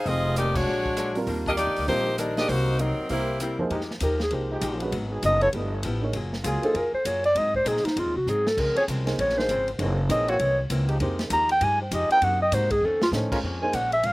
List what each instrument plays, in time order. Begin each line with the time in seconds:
0.06 upright bass F1, hollow-body jazz guitar F2 D#3 G#3 C4, saxophone section C4 F4 G#4 D#5, kick, open hi-hat
0.36 hollow-body jazz guitar F2 D#3 G#3 C4, saxophone section A#3 D#4 G4 D5, closed hi-hat
0.55 saxophone section G#3 D4 F#4 C#5, kick, crash
0.66 upright bass A#1, hollow-body jazz guitar A#2 F#3 G#3 D4
0.86 kick
0.97 hollow-body jazz guitar A#2 F#3 G#3 D4, cross-stick, closed hi-hat
1.15 grand piano G3 C4 F4 A#4, open hi-hat
1.27 upright bass D#2, hollow-body jazz guitar D#3 G3 A#3 D4, kick, open hi-hat
1.46 saxophone section A#3 D4 G4 D#5, kick
1.57 hollow-body jazz guitar D#3 G3 A#3 D4, saxophone section A#3 D#4 G4 D5, closed hi-hat
1.67 upright bass G2
1.76 upright bass D2, open hi-hat
1.87 upright bass A#1, hollow-body jazz guitar D#3 G3 A#3 D4, grand piano G3 C4 F4 A#4, saxophone section A#3 D#4 G4 C5, kick, open hi-hat
2.18 hollow-body jazz guitar D#3 G3 A#3 D4, saxophone section G3 D4 D#4 A#4, cross-stick, closed hi-hat
2.37 grand piano A#3 D#4 G#4 C5, saxophone section A#3 D4 G4 D#5, snare, open hi-hat
2.48 upright bass C2, hollow-body jazz guitar C3 F#3 A#3 D#4, saxophone section A#3 D#4 F#4 C5, kick, open hi-hat
2.79 hollow-body jazz guitar C3 F#3 A#3 D#4, saxophone section F#3 C4 D#4 A#4, closed hi-hat
2.98 muted upright bass stroke
3.09 upright bass C2, hollow-body jazz guitar C3 G3 A#3 E4, saxophone section A#3 E4 G4 C5, grand piano C4 E4 G4 A#4, kick, open hi-hat
3.40 hollow-body jazz guitar C3 G3 A#3 E4, saxophone section G3 C4 E4 A#4, cross-stick, closed hi-hat
3.58 upright bass E2, grand piano F3 A#3 D#4 G#4 C5
3.70 upright bass F2, trombone section F3 G#3 D#4 G4, hollow-body jazz guitar F3 G#3 D#4 G4, kick, ride
3.81 snare
3.91 snare
4.00 upright bass D#2, hollow-body jazz guitar F3 G#3 D#4 G4, clarinet A#4, kick, hi-hat pedal, ride
4.20 clarinet G#4, snare
4.31 upright bass C2, hollow-body jazz guitar F3 G#3 D#4 G4, grand piano A#3 D#4 G#4 C5, kick, ride
4.50 trombone section F3 G#3 D#4 G4
4.61 upright bass A#1, hollow-body jazz guitar F3 G#3 D#4 G4, kick, hi-hat pedal, ride
4.80 grand piano G#3 C#4 F#4 B4, ride
4.92 upright bass G#1, hollow-body jazz guitar G#2 F#3 B3 D#4, kick, ride
5.10 trombone section F#3 B3 D#4 G#4
5.23 upright bass F#1, hollow-body jazz guitar G#2 F#3 B3 D#4, clarinet D#5, kick, hi-hat pedal, ride
5.41 trombone section F3 B3 E4 A4, clarinet C#5, ride
5.53 upright bass G1, hollow-body jazz guitar G2 F3 B3 E4, grand piano A3 D4 G4 B4, kick, ride
5.83 upright bass A1, hollow-body jazz guitar G2 F3 B3 E4, kick, hi-hat pedal, ride
6.02 grand piano A#3 D#4 G#4 C#5
6.13 upright bass F#1, hollow-body jazz guitar F#3 A#3 F4 G#4, kick, ride
6.33 snare
6.44 upright bass C#2, trombone section F#3 A#3 F4 G#4, hollow-body jazz guitar F#3 A#3 F4 G#4, kick, hi-hat pedal, ride
6.62 grand piano A#3 D#4 G#4 C5, clarinet A4, muted upright bass stroke, ride
6.74 upright bass F2, hollow-body jazz guitar F#3 A#3 F4 G#4, clarinet A#4, kick, ride
6.93 clarinet C5, muted upright bass stroke
7.05 upright bass F#2, hollow-body jazz guitar F#3 A#3 F4 G#4, clarinet C#5, kick, hi-hat pedal, ride
7.24 clarinet D5, ride
7.35 upright bass G#2, hollow-body jazz guitar G#2 F#3 C4 D#4, clarinet D#5, kick, ride
7.55 clarinet C5, kick
7.65 hollow-body jazz guitar G#2 F#3 C4 D#4, upright bass A#2, trombone section F#3 C4 D#4 G#4, clarinet G#4, kick, hi-hat pedal, ride
7.77 snare
7.84 clarinet D#4, muted upright bass stroke, snare, ride
7.96 upright bass F#2, hollow-body jazz guitar G#2 F#3 C4 D#4, clarinet F4, kick, ride
8.06 upright bass D#2
8.16 upright bass C2, clarinet F#4
8.26 upright bass G#2, hollow-body jazz guitar G#2 F#3 C4 D#4, clarinet G#4, hi-hat pedal
8.47 clarinet A4, snare
8.57 upright bass C#2, hollow-body jazz guitar C#3 F3 G#3 C4, clarinet A#4, kick, crash
8.75 trombone section F3 C4 C#4 G#4, clarinet C#5, muted upright bass stroke, ride
8.88 upright bass C2, hollow-body jazz guitar C#3 F3 G#3 C4, kick, hi-hat pedal, ride
9.06 grand piano A#3 D#4 G#4 C5, snare, ride
9.18 upright bass A#1, hollow-body jazz guitar C#3 F3 G#3 C4, clarinet C#5, kick, ride
9.29 snare
9.37 grand piano A#3 D#4 G#4 C5, clarinet C5, snare
9.49 upright bass G#1, hollow-body jazz guitar C#3 F3 G#3 C4, kick, hi-hat pedal, ride
9.68 ride
9.78 upright bass F#1, hollow-body jazz guitar F#2 E3 A#3 C4, grand piano A#3 D#4 G#4 C#5, kick, ride
10.09 upright bass A#1, hollow-body jazz guitar F#2 E3 A#3 C4, grand piano A#3 D#4 G#4 C#5, clarinet D#5, kick, hi-hat pedal, ride
10.28 trombone section E3 A#3 C4 F#4, clarinet C#5, ride
10.39 upright bass C2, hollow-body jazz guitar F#2 E3 A#3 C4, kick, ride
10.70 upright bass C#2, hollow-body jazz guitar F#2 E3 A#3 C4, kick, hi-hat pedal, ride
10.88 trombone section F3 G#3 D#4 G4, ride
11.00 upright bass F2, hollow-body jazz guitar F3 G#3 D#4 G4, grand piano A#3 D#4 G#4 C5, kick, ride
11.19 snare, ride
11.30 upright bass D#2, hollow-body jazz guitar F3 G#3 D#4 G4, clarinet A#5, kick, hi-hat pedal, ride
11.49 clarinet G5, ride
11.61 upright bass G2, hollow-body jazz guitar F3 G#3 D#4 G4, clarinet G#5, kick, ride
11.81 clarinet C5
11.91 upright bass F2, hollow-body jazz guitar F3 G#3 D#4 G4, clarinet D#5, kick, hi-hat pedal, ride
12.09 trombone section F#3 C4 D#4 A#4, clarinet G5, muted upright bass stroke, ride
12.22 upright bass F#2, hollow-body jazz guitar C3 A#3 D#4 F#4, clarinet F#5, kick, ride
12.42 clarinet D#5
12.52 upright bass G#2, hollow-body jazz guitar C3 A#3 D#4 F#4, clarinet C5, kick, hi-hat pedal, ride
12.70 clarinet G#4, kick, ride
12.81 upright bass F2, hollow-body jazz guitar F2 D#3 A3, clarinet A4
12.85 hollow-body jazz guitar C#4
13.02 clarinet F4, snare
13.12 hollow-body jazz guitar F2 D#3 A3 C#4, upright bass A2, grand piano C#4 D#4 A4 C5, snare, hi-hat pedal
13.31 trombone section G#3 C#4 F4 A#4, kick, crash
13.43 upright bass F2, hollow-body jazz guitar A#2 F3 G#3 C#4, kick
13.62 grand piano A#3 D#4 G#4 C5, clarinet G#5
13.73 upright bass A#1, hollow-body jazz guitar A#2 F3 G#3 C#4, clarinet F#5, kick, hi-hat pedal, ride
13.92 clarinet E5, ride
14.03 upright bass G#1, hollow-body jazz guitar A#2 F3 G#3 C#4, clarinet F5, kick, ride